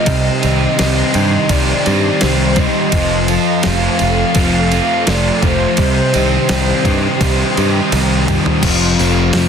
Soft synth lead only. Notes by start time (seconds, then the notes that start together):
Already playing: D#5
0.80 D#5
1.50 D5
2.22 C5
2.58 D#5
3.66 F5
4.37 F5
5.08 D5
5.42 C5